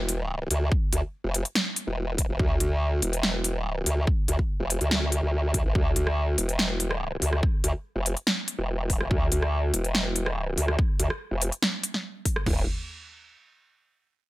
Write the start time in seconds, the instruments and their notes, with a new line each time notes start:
Already playing: wobble bass E1
0.09 closed hi-hat
0.51 wobble bass D2, closed hi-hat
0.72 kick
0.93 wobble bass D2, closed hi-hat
1.24 wobble bass F1
1.34 closed hi-hat
1.45 closed hi-hat
1.55 snare
1.76 closed hi-hat
1.87 wobble bass E1
2.18 kick, closed hi-hat
2.29 wobble bass F1
2.39 wobble bass D2, kick
2.60 wobble bass D2, closed hi-hat
3.02 wobble bass E1, closed hi-hat
3.13 closed hi-hat
3.23 snare
3.44 closed hi-hat
3.86 wobble bass D2, closed hi-hat
4.07 kick
4.28 wobble bass D2, closed hi-hat
4.39 kick
4.60 wobble bass F1
4.70 closed hi-hat
4.81 wobble bass D2, closed hi-hat
4.91 snare
5.12 closed hi-hat
5.23 wobble bass D2
5.54 kick, closed hi-hat
5.65 wobble bass A1
5.75 wobble bass D2, kick
5.96 wobble bass D2, closed hi-hat
6.07 cross-stick
6.38 wobble bass E1, closed hi-hat
6.49 closed hi-hat
6.59 snare
6.80 closed hi-hat
6.91 cross-stick
7.22 wobble bass D2, open hi-hat
7.33 cross-stick
7.43 kick
7.64 wobble bass D2, closed hi-hat
7.96 wobble bass F1
8.06 closed hi-hat
8.17 closed hi-hat
8.27 snare
8.48 closed hi-hat
8.59 wobble bass E1
8.90 kick, open hi-hat
9.00 wobble bass F1, cross-stick
9.11 wobble bass D2, kick
9.32 wobble bass D2, closed hi-hat
9.42 cross-stick
9.74 wobble bass E1, closed hi-hat
9.84 closed hi-hat
9.95 snare
10.16 closed hi-hat
10.26 cross-stick
10.58 wobble bass D2, open hi-hat
10.68 cross-stick
10.79 kick
11.00 wobble bass D2, closed hi-hat
11.10 cross-stick
11.31 wobble bass F1
11.42 closed hi-hat
11.52 closed hi-hat
11.62 snare
11.84 closed hi-hat
11.94 snare
12.25 kick, open hi-hat
12.36 cross-stick
12.46 wobble bass D1, kick, floor tom, crash